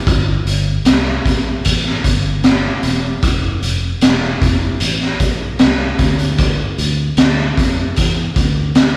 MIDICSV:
0, 0, Header, 1, 3, 480
1, 0, Start_track
1, 0, Tempo, 790202
1, 41, Time_signature, 4, 2, 24, 8
1, 5448, End_track
2, 0, Start_track
2, 0, Title_t, "Fingered electric bass"
2, 0, Program_c, 0, 33
2, 40, Note_on_c, 0, 31, 89
2, 232, Note_off_c, 0, 31, 0
2, 276, Note_on_c, 0, 31, 93
2, 470, Note_off_c, 0, 31, 0
2, 515, Note_on_c, 0, 36, 81
2, 710, Note_off_c, 0, 36, 0
2, 760, Note_on_c, 0, 34, 90
2, 953, Note_off_c, 0, 34, 0
2, 1006, Note_on_c, 0, 33, 78
2, 1196, Note_off_c, 0, 33, 0
2, 1241, Note_on_c, 0, 31, 74
2, 1625, Note_off_c, 0, 31, 0
2, 1721, Note_on_c, 0, 28, 80
2, 1913, Note_off_c, 0, 28, 0
2, 1960, Note_on_c, 0, 29, 87
2, 2152, Note_off_c, 0, 29, 0
2, 2201, Note_on_c, 0, 29, 91
2, 2393, Note_off_c, 0, 29, 0
2, 2440, Note_on_c, 0, 28, 80
2, 2632, Note_off_c, 0, 28, 0
2, 2681, Note_on_c, 0, 29, 77
2, 2873, Note_off_c, 0, 29, 0
2, 2918, Note_on_c, 0, 33, 82
2, 3111, Note_off_c, 0, 33, 0
2, 3159, Note_on_c, 0, 34, 77
2, 3352, Note_off_c, 0, 34, 0
2, 3400, Note_on_c, 0, 36, 72
2, 3592, Note_off_c, 0, 36, 0
2, 3638, Note_on_c, 0, 38, 98
2, 4023, Note_off_c, 0, 38, 0
2, 4121, Note_on_c, 0, 38, 96
2, 4313, Note_off_c, 0, 38, 0
2, 4356, Note_on_c, 0, 38, 81
2, 4550, Note_off_c, 0, 38, 0
2, 4601, Note_on_c, 0, 41, 80
2, 4793, Note_off_c, 0, 41, 0
2, 4844, Note_on_c, 0, 40, 86
2, 5035, Note_off_c, 0, 40, 0
2, 5078, Note_on_c, 0, 38, 84
2, 5448, Note_off_c, 0, 38, 0
2, 5448, End_track
3, 0, Start_track
3, 0, Title_t, "Drums"
3, 42, Note_on_c, 9, 36, 104
3, 44, Note_on_c, 9, 42, 64
3, 103, Note_off_c, 9, 36, 0
3, 105, Note_off_c, 9, 42, 0
3, 284, Note_on_c, 9, 42, 59
3, 344, Note_off_c, 9, 42, 0
3, 517, Note_on_c, 9, 42, 96
3, 524, Note_on_c, 9, 38, 113
3, 578, Note_off_c, 9, 42, 0
3, 585, Note_off_c, 9, 38, 0
3, 763, Note_on_c, 9, 36, 82
3, 768, Note_on_c, 9, 42, 57
3, 824, Note_off_c, 9, 36, 0
3, 829, Note_off_c, 9, 42, 0
3, 1000, Note_on_c, 9, 42, 82
3, 1007, Note_on_c, 9, 36, 71
3, 1061, Note_off_c, 9, 42, 0
3, 1068, Note_off_c, 9, 36, 0
3, 1126, Note_on_c, 9, 38, 34
3, 1187, Note_off_c, 9, 38, 0
3, 1241, Note_on_c, 9, 36, 80
3, 1242, Note_on_c, 9, 42, 66
3, 1302, Note_off_c, 9, 36, 0
3, 1303, Note_off_c, 9, 42, 0
3, 1479, Note_on_c, 9, 42, 68
3, 1483, Note_on_c, 9, 38, 111
3, 1540, Note_off_c, 9, 42, 0
3, 1543, Note_off_c, 9, 38, 0
3, 1718, Note_on_c, 9, 42, 59
3, 1779, Note_off_c, 9, 42, 0
3, 1959, Note_on_c, 9, 42, 69
3, 1961, Note_on_c, 9, 36, 99
3, 2020, Note_off_c, 9, 42, 0
3, 2022, Note_off_c, 9, 36, 0
3, 2203, Note_on_c, 9, 42, 54
3, 2263, Note_off_c, 9, 42, 0
3, 2438, Note_on_c, 9, 42, 90
3, 2445, Note_on_c, 9, 38, 104
3, 2498, Note_off_c, 9, 42, 0
3, 2506, Note_off_c, 9, 38, 0
3, 2683, Note_on_c, 9, 36, 85
3, 2688, Note_on_c, 9, 42, 60
3, 2744, Note_off_c, 9, 36, 0
3, 2749, Note_off_c, 9, 42, 0
3, 2916, Note_on_c, 9, 42, 85
3, 2977, Note_off_c, 9, 42, 0
3, 3042, Note_on_c, 9, 38, 33
3, 3103, Note_off_c, 9, 38, 0
3, 3157, Note_on_c, 9, 42, 60
3, 3159, Note_on_c, 9, 36, 78
3, 3218, Note_off_c, 9, 42, 0
3, 3219, Note_off_c, 9, 36, 0
3, 3395, Note_on_c, 9, 42, 78
3, 3399, Note_on_c, 9, 38, 104
3, 3456, Note_off_c, 9, 42, 0
3, 3459, Note_off_c, 9, 38, 0
3, 3637, Note_on_c, 9, 42, 59
3, 3640, Note_on_c, 9, 36, 69
3, 3697, Note_off_c, 9, 42, 0
3, 3700, Note_off_c, 9, 36, 0
3, 3759, Note_on_c, 9, 42, 45
3, 3820, Note_off_c, 9, 42, 0
3, 3876, Note_on_c, 9, 42, 67
3, 3879, Note_on_c, 9, 36, 99
3, 3937, Note_off_c, 9, 42, 0
3, 3940, Note_off_c, 9, 36, 0
3, 4120, Note_on_c, 9, 42, 64
3, 4181, Note_off_c, 9, 42, 0
3, 4355, Note_on_c, 9, 42, 85
3, 4362, Note_on_c, 9, 38, 107
3, 4416, Note_off_c, 9, 42, 0
3, 4423, Note_off_c, 9, 38, 0
3, 4601, Note_on_c, 9, 36, 83
3, 4607, Note_on_c, 9, 42, 63
3, 4662, Note_off_c, 9, 36, 0
3, 4668, Note_off_c, 9, 42, 0
3, 4837, Note_on_c, 9, 42, 77
3, 4844, Note_on_c, 9, 36, 76
3, 4898, Note_off_c, 9, 42, 0
3, 4905, Note_off_c, 9, 36, 0
3, 5078, Note_on_c, 9, 36, 84
3, 5078, Note_on_c, 9, 42, 71
3, 5139, Note_off_c, 9, 36, 0
3, 5139, Note_off_c, 9, 42, 0
3, 5316, Note_on_c, 9, 42, 77
3, 5319, Note_on_c, 9, 38, 108
3, 5376, Note_off_c, 9, 42, 0
3, 5380, Note_off_c, 9, 38, 0
3, 5448, End_track
0, 0, End_of_file